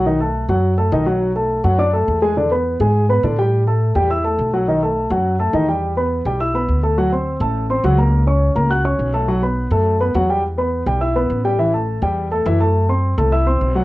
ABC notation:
X:1
M:4/4
L:1/8
Q:1/4=208
K:Em
V:1 name="Grand piano"
[^D,^D^d] [A,Aa]2 [F,Ff]2 [A,Aa] [D,Dd] [F,Ff]- | [F,Ff] [A,Aa]2 [F,Ff] [Ddd'] [A,Aa]2 [^G,^G^g] | [D,Dd] [B,Bb]2 [^G,^G^g]2 [B,Bb] [D,Dd] [=G,=G=g]- | [G,Gg] [A,Aa]2 [G,Gg] [Eee'] [A,Aa]2 [F,Ff] |
[^D,^D^d] [A,Aa]2 [F,Ff]2 [A,Aa] [D,Dd] [G,Gg]- | [G,Gg] [B,Bb]2 [G,Gg] [Eee'] [B,Bb]2 [A,Aa] | [F,Ff] [Ccc']2 [A,Aa]2 [Ccc'] [F,Ff] [^A,^A^a]- | [^A,^A^a] [^C^c^c']2 [A,Aa] [Fff'] [Ccc']2 [=A,=A=a] |
[F,Ff] [B,Bb]2 [A,Aa]2 [B,Bb] [F,Ff] [G,Gg] | z [B,Bb]2 [G,Gg] [Eee'] [B,Bb]2 [G,Gg] | [E,Ee] [A,Aa]2 [G,Gg]2 [A,Aa] [E,Ee] [A,Aa]- | [A,Aa] [Ccc']2 [A,Aa] [Eee'] [Ccc']2 [F,Ff] |]
V:2 name="Upright bass" clef=bass
B,,,3 F,,3 B,,,2- | B,,,3 F,,3 E,,2- | E,,3 ^G,,3 A,,2- | A,,3 E,,3 B,,,2- |
B,,,3 F,,3 E,,2- | E,,3 B,,,3 D,,2- | D,,3 A,,,3 ^C,,2- | ^C,,3 C,,3 B,,,2- |
B,,,3 F,,3 E,,2- | E,,3 B,,,3 A,,,2- | A,,,3 E,,3 F,,2- | F,,3 C,,3 B,,,2 |]